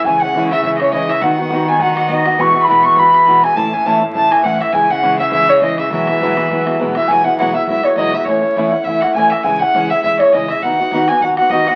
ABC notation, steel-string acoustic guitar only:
X:1
M:4/4
L:1/8
Q:"Swing" 1/4=204
K:E
V:1 name="Steel-string acoustic guitar"
[C,E,G,CE] [G,CE] [C,E,G,CE] [G,CE] [E,G,CE] [G,CE] [C,E,G,CE] [G,CE] | [D,B,DF] [B,DF] [D,B,DF] [B,DF] [D,B,DF] [B,DF] [D,B,DF] [B,DF] | [E,,B,,E,G,B,F] [E,G,B,F] [E,,B,,E,G,B,F] [E,G,B,F] [E,G,B,F] [E,G,B,F] [E,,B,,E,G,B,F] [E,G,B,F] | [A,,E,A,CE] [A,CE] [A,,E,A,CE] [A,CE] [E,A,CE] [A,CE] [A,,E,A,CE] [A,CE] |
[C,E,G,CE] [G,CE] [C,E,G,CE] [G,CE] [E,G,CE] [G,CE] [C,E,G,CE] [G,CE] | [E,,B,,F,G,B,E] [F,G,B,E] [E,,B,,F,G,B,E] [F,G,B,E] [F,G,B,E] [F,G,B,E] [E,,B,,F,G,B,E] [F,G,B,E] | [E,,B,,F,G,B,E] [F,G,B,E] [E,,B,,F,G,B,E] [F,G,B,E] [F,G,B,E] [F,G,B,E] [E,,B,,F,G,B,E] [F,G,B,E] | [A,,E,A,CE] [A,CE] [A,,E,A,CE] [A,CE] [E,A,CE] [A,CE] [A,,E,A,CE] [A,CE] |
[C,E,G,CE] [G,CE] [C,E,G,CE] [G,CE] [E,G,CE] [G,CE] [C,E,G,CE] [G,CE] | [D,B,DF] [B,DF] [D,B,DF] [B,DF] [D,B,DF] [B,DF] [D,B,DF] [B,DF] |]